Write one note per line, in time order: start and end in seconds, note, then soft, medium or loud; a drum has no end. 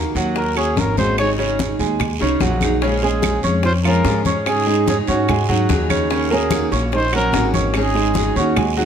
0.00 0.34 D#3 medium
0.00 0.34 A#3 medium
0.00 0.35 C#4 medium
0.00 0.35 F#4 medium
0.15 0.73 D#2 medium
0.15 0.49 F#3 medium
0.15 0.50 F#4 medium
0.15 0.50 F#5 medium
0.15 high bongo soft
0.15 short guiro medium
0.35 0.59 A#4 medium
0.35 muted steel-string acoustic guitar stroke medium
0.35 high bongo medium
0.35 high conga soft
0.35 long guiro medium
0.55 0.76 A#3 medium
0.55 0.76 C#4 medium
0.55 0.90 C#4 medium
0.55 0.76 F#4 medium
0.55 0.81 G#4 medium
0.55 0.91 C#5 medium
0.55 0.91 C#6 medium
0.55 high bongo soft
0.55 high conga soft
0.55 claves medium
0.76 1.73 G#1 medium
0.76 0.96 D#3 medium
0.76 0.97 A#3 medium
0.76 0.97 C#4 medium
0.76 0.96 F#4 medium
0.76 0.98 A#4 medium
0.76 high bongo medium
0.76 low bongo medium
0.76 high conga medium
0.76 short guiro medium
0.97 1.31 G#3 medium
0.97 1.18 A#3 medium
0.97 1.18 C#4 medium
0.97 1.17 F#4 medium
0.97 1.32 G#4 medium
0.97 1.17 C5 loud
0.97 1.32 G#5 medium
0.97 high conga medium
0.97 short guiro medium
1.18 1.58 C#3 medium
1.18 1.57 F#3 medium
1.18 1.58 C#4 medium
1.18 1.59 D#4 medium
1.18 1.59 G#4 medium
1.18 1.31 C#5 medium
1.18 high bongo medium
1.18 high conga soft
1.18 long guiro medium
1.18 claves medium
1.38 1.72 C#3 medium
1.38 1.72 C#4 medium
1.38 1.72 C#5 medium
1.38 high bongo soft
1.38 high conga soft
1.59 1.98 F#3 medium
1.59 1.99 C#4 medium
1.59 1.99 D#4 soft
1.59 1.99 G#4 medium
1.59 high bongo medium
1.59 high conga medium
1.59 short guiro medium
1.79 2.18 D#2 medium
1.79 2.13 G#3 medium
1.79 2.13 G#4 medium
1.79 2.14 G#5 medium
1.79 short guiro medium
1.99 muted steel-string acoustic guitar stroke medium
1.99 high bongo medium
1.99 high conga soft
1.99 low conga medium
1.99 long guiro medium
1.99 claves medium
2.19 2.40 C2 medium
2.19 2.38 C#3 medium
2.19 2.39 F#3 medium
2.19 2.40 C#4 medium
2.19 2.38 C#4 medium
2.19 2.40 D#4 medium
2.19 2.40 G#4 medium
2.19 2.38 C#5 medium
2.19 high bongo soft
2.19 high conga soft
2.40 3.37 A#1 medium
2.40 2.60 F#3 soft
2.40 2.75 F#3 medium
2.40 2.61 C#4 medium
2.40 2.61 D#4 medium
2.40 2.75 F#4 medium
2.40 2.60 G#4 medium
2.40 2.75 F#5 medium
2.40 high bongo medium
2.40 low bongo medium
2.40 high conga medium
2.40 short guiro medium
2.61 2.81 F#3 medium
2.61 2.82 C#4 medium
2.61 2.82 D#4 medium
2.61 2.81 G#4 medium
2.61 high bongo soft
2.61 high conga medium
2.61 short guiro medium
2.61 claves medium
2.82 2.99 C#3 medium
2.82 3.02 F3 medium
2.82 3.02 G#3 medium
2.82 2.99 C#4 medium
2.82 3.03 C#4 medium
2.82 3.02 F4 medium
2.82 2.99 C#5 medium
2.82 high bongo medium
2.82 high conga soft
2.82 long guiro medium
3.02 3.36 G#3 medium
3.02 3.23 G#3 soft
3.02 3.23 C#4 soft
3.02 3.22 F4 medium
3.02 3.36 G#4 medium
3.02 3.41 G#4 medium
3.02 3.36 G#5 medium
3.02 high bongo soft
3.02 high conga soft
3.22 3.43 F3 medium
3.22 3.43 G#3 medium
3.22 3.43 C#4 medium
3.22 3.42 F4 medium
3.22 high bongo medium
3.22 high conga medium
3.22 short guiro medium
3.22 claves medium
3.43 4.01 F2 medium
3.43 3.63 G#3 soft
3.43 3.77 C#4 medium
3.43 3.63 C#4 soft
3.43 3.63 F4 soft
3.43 3.77 C#5 medium
3.43 3.77 C#6 medium
3.43 high bongo soft
3.43 high conga soft
3.43 short guiro medium
3.63 3.71 F4 medium
3.63 3.74 C5 loud
3.63 muted steel-string acoustic guitar stroke medium
3.63 high bongo medium
3.63 high conga soft
3.63 long guiro medium
3.84 4.18 F3 medium
3.84 4.05 G#3 soft
3.84 4.04 C#4 soft
3.84 4.04 F4 soft
3.84 4.18 F4 medium
3.84 4.23 A#4 loud
3.84 4.19 F5 medium
3.84 high conga soft
3.84 claves medium
4.05 5.01 G#2 loud
4.05 4.45 F3 medium
4.05 4.46 G#3 medium
4.05 4.46 C#4 medium
4.05 4.46 F4 medium
4.05 high bongo medium
4.05 low bongo medium
4.05 high conga soft
4.05 short guiro medium
4.25 4.59 C#4 medium
4.25 4.59 C#5 medium
4.25 4.60 C#6 medium
4.25 high bongo soft
4.25 high conga medium
4.25 short guiro medium
4.46 4.66 C#3 medium
4.46 4.66 F#3 medium
4.46 4.66 C#4 medium
4.46 4.67 D#4 medium
4.46 4.85 G#4 loud
4.46 4.66 G#4 medium
4.46 high bongo medium
4.46 high conga soft
4.46 long guiro medium
4.46 claves medium
4.66 5.00 G#3 medium
4.66 4.87 C#4 soft
4.66 4.87 D#4 soft
4.66 5.00 G#4 medium
4.66 4.86 G#4 medium
4.66 5.00 G#5 medium
4.66 high bongo soft
4.66 high conga soft
4.86 5.06 C#3 medium
4.86 5.07 F#3 medium
4.86 5.07 C#4 medium
4.86 5.07 D#4 medium
4.86 4.98 G#4 medium
4.86 5.06 G#4 medium
4.86 high bongo medium
4.86 high conga loud
4.86 short guiro medium
5.07 5.65 G#2 medium
5.07 5.24 C#4 medium
5.07 5.28 C#4 soft
5.07 5.28 D#4 soft
5.07 5.46 F#4 medium
5.07 5.27 G#4 soft
5.07 5.25 C#5 medium
5.07 5.25 C#6 medium
5.07 high conga soft
5.07 short guiro medium
5.28 5.45 G#3 medium
5.28 5.45 G#4 medium
5.28 5.45 G#5 medium
5.28 muted steel-string acoustic guitar stroke medium
5.28 high bongo medium
5.28 high conga soft
5.28 low conga medium
5.28 long guiro medium
5.28 claves medium
5.48 5.82 F#3 medium
5.48 5.69 C#4 soft
5.48 5.69 D#4 soft
5.48 5.82 F#4 medium
5.48 5.68 G#4 medium
5.48 5.83 F#5 medium
5.48 high bongo soft
5.48 high conga soft
5.48 low conga medium
5.69 6.66 D#2 medium
5.69 6.09 C#3 medium
5.69 6.09 F#3 medium
5.69 6.10 C#4 medium
5.69 6.10 D#4 medium
5.69 6.10 G#4 medium
5.69 high bongo medium
5.69 low bongo medium
5.69 high conga medium
5.69 short guiro medium
5.89 6.06 C#3 medium
5.89 6.06 C#4 medium
5.89 6.07 C#5 medium
5.89 high bongo soft
5.89 high conga medium
5.89 short guiro medium
5.89 claves medium
6.10 6.27 C#3 medium
6.10 6.30 D#3 medium
6.10 6.30 A#3 medium
6.10 6.27 C#4 medium
6.10 6.31 C#4 medium
6.10 6.30 F#4 medium
6.10 6.27 C#5 medium
6.10 high bongo medium
6.10 long guiro medium
6.30 6.64 A#3 medium
6.30 6.51 A#3 soft
6.30 6.51 C#4 medium
6.30 6.51 F#4 medium
6.30 6.70 G#4 loud
6.30 6.64 A#4 medium
6.30 6.65 A#5 medium
6.30 high bongo soft
6.30 high conga soft
6.51 6.71 D#3 medium
6.51 6.71 A#3 medium
6.51 6.72 C#4 medium
6.51 6.71 F#4 medium
6.51 high bongo medium
6.51 high conga loud
6.51 short guiro medium
6.51 claves medium
6.72 7.29 A#1 medium
6.72 6.91 A#3 soft
6.72 7.05 C#4 medium
6.72 6.92 C#4 soft
6.72 6.92 F#4 medium
6.72 7.06 C#5 medium
6.72 7.06 C#6 medium
6.72 high bongo soft
6.72 high conga soft
6.72 short guiro medium
6.92 7.13 D#4 medium
6.92 7.12 C5 loud
6.92 muted steel-string acoustic guitar stroke medium
6.92 high bongo medium
6.92 high conga soft
6.92 long guiro medium
7.12 7.46 F#3 medium
7.12 7.32 A#3 soft
7.12 7.32 C#4 soft
7.12 7.32 F#4 medium
7.12 7.46 F#4 medium
7.12 7.53 A#4 loud
7.12 7.47 F#5 medium
7.12 high conga soft
7.12 claves medium
7.32 8.30 G#1 loud
7.32 7.73 D#3 medium
7.32 7.73 A#3 medium
7.32 7.74 C#4 medium
7.32 7.74 F#4 medium
7.32 high bongo medium
7.32 low bongo medium
7.32 short guiro medium
7.53 7.87 C#4 medium
7.53 7.88 C#5 medium
7.53 7.88 C#6 medium
7.53 high bongo soft
7.53 high conga medium
7.53 short guiro medium
7.74 7.94 C#3 medium
7.74 7.94 F#3 medium
7.74 7.94 C#4 medium
7.74 7.94 D#4 medium
7.74 7.93 G#4 medium
7.74 8.33 G#4 medium
7.74 high bongo medium
7.74 high conga soft
7.74 long guiro medium
7.74 claves medium
7.94 8.28 G#3 medium
7.94 8.13 C#4 soft
7.94 8.14 D#4 medium
7.94 8.14 G#4 medium
7.94 8.29 G#4 medium
7.94 8.29 G#5 medium
7.94 high bongo soft
7.94 high conga soft
8.14 8.34 C#3 medium
8.14 8.34 F#3 medium
8.14 8.35 C#4 medium
8.14 8.35 D#4 medium
8.14 8.34 G#4 medium
8.14 high bongo medium
8.14 high conga loud
8.14 short guiro medium
8.36 8.85 D#2 medium
8.36 8.53 C#4 medium
8.36 8.55 C#4 soft
8.36 8.56 D#4 soft
8.36 8.75 F#4 medium
8.36 8.55 G#4 medium
8.36 8.53 C#5 medium
8.36 8.53 C#6 medium
8.36 high conga soft
8.36 short guiro medium
8.56 8.73 G#3 medium
8.56 8.73 G#4 medium
8.56 8.73 G#5 medium
8.56 muted steel-string acoustic guitar stroke medium
8.56 high bongo medium
8.56 high conga soft
8.56 low conga medium
8.56 long guiro medium
8.56 claves medium
8.76 8.85 F#3 medium
8.76 8.85 C#4 soft
8.76 8.85 D#4 soft
8.76 8.85 F#4 medium
8.76 8.85 G#4 medium
8.76 8.85 F#5 medium
8.76 high bongo soft
8.76 high conga soft